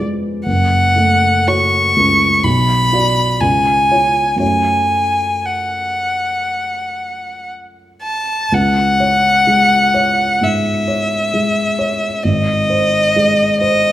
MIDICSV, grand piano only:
0, 0, Header, 1, 2, 480
1, 0, Start_track
1, 0, Key_signature, 3, "minor"
1, 0, Tempo, 918836
1, 241, Time_signature, 4, 2, 24, 8
1, 241, Tempo, 1016949
1, 721, Tempo, 977199
1, 2161, Tempo, 1027397
1, 4081, Key_signature, 4, "minor"
1, 4081, Tempo, 947867
1, 5041, Tempo, 906344
1, 6898, End_track
2, 0, Start_track
2, 0, Title_t, "Grand piano"
2, 0, Program_c, 0, 0
2, 0, Control_c, 0, 64, 127
2, 0, Note_on_c, 0, 41, 31
2, 0, Note_on_c, 0, 56, 29
2, 0, Note_on_c, 0, 68, 29
2, 0, Note_on_c, 0, 71, 34
2, 239, Note_on_c, 0, 30, 38
2, 240, Note_off_c, 0, 56, 0
2, 249, Control_c, 0, 64, 0
2, 251, Note_off_c, 0, 41, 0
2, 253, Note_off_c, 0, 68, 0
2, 254, Note_off_c, 0, 71, 0
2, 316, Control_c, 0, 64, 127
2, 474, Note_on_c, 0, 57, 31
2, 719, Note_on_c, 0, 66, 30
2, 720, Note_on_c, 0, 73, 29
2, 866, Note_off_c, 0, 57, 0
2, 942, Note_off_c, 0, 66, 0
2, 942, Note_off_c, 0, 73, 0
2, 959, Note_on_c, 0, 37, 30
2, 1176, Note_off_c, 0, 30, 0
2, 1192, Note_on_c, 0, 35, 37
2, 1195, Note_off_c, 0, 37, 0
2, 1206, Control_c, 0, 64, 0
2, 1293, Control_c, 0, 64, 127
2, 1433, Note_on_c, 0, 66, 26
2, 1437, Note_on_c, 0, 74, 29
2, 1652, Note_off_c, 0, 66, 0
2, 1655, Note_off_c, 0, 35, 0
2, 1655, Note_off_c, 0, 74, 0
2, 1669, Note_on_c, 0, 37, 34
2, 1681, Control_c, 0, 64, 0
2, 1773, Control_c, 0, 64, 127
2, 1916, Note_on_c, 0, 65, 23
2, 1918, Note_on_c, 0, 73, 24
2, 2137, Note_on_c, 0, 42, 28
2, 2143, Note_off_c, 0, 65, 0
2, 2144, Note_off_c, 0, 73, 0
2, 2145, Note_off_c, 0, 37, 0
2, 2145, Note_on_c, 0, 57, 22
2, 2148, Note_on_c, 0, 66, 21
2, 2155, Note_on_c, 0, 73, 22
2, 2171, Control_c, 0, 64, 0
2, 2250, Control_c, 0, 64, 127
2, 4051, Note_off_c, 0, 42, 0
2, 4054, Note_off_c, 0, 57, 0
2, 4056, Note_off_c, 0, 66, 0
2, 4060, Note_off_c, 0, 73, 0
2, 4081, Note_on_c, 0, 37, 39
2, 4090, Control_c, 0, 64, 0
2, 4180, Control_c, 0, 64, 127
2, 4325, Note_on_c, 0, 73, 31
2, 4562, Note_on_c, 0, 56, 29
2, 4707, Note_off_c, 0, 73, 0
2, 4802, Note_on_c, 0, 73, 32
2, 4947, Note_off_c, 0, 56, 0
2, 5021, Note_off_c, 0, 37, 0
2, 5039, Note_on_c, 0, 44, 33
2, 5187, Note_off_c, 0, 73, 0
2, 5286, Note_on_c, 0, 73, 33
2, 5424, Note_off_c, 0, 44, 0
2, 5529, Note_on_c, 0, 56, 29
2, 5664, Note_off_c, 0, 73, 0
2, 5768, Note_on_c, 0, 73, 31
2, 5905, Note_off_c, 0, 56, 0
2, 6004, Note_off_c, 0, 73, 0
2, 6007, Control_c, 0, 64, 0
2, 6010, Note_on_c, 0, 32, 44
2, 6098, Control_c, 0, 64, 127
2, 6250, Note_on_c, 0, 72, 36
2, 6496, Note_on_c, 0, 56, 35
2, 6633, Note_off_c, 0, 72, 0
2, 6735, Note_on_c, 0, 72, 38
2, 6869, Note_off_c, 0, 56, 0
2, 6898, Note_off_c, 0, 32, 0
2, 6898, Note_off_c, 0, 72, 0
2, 6898, End_track
0, 0, End_of_file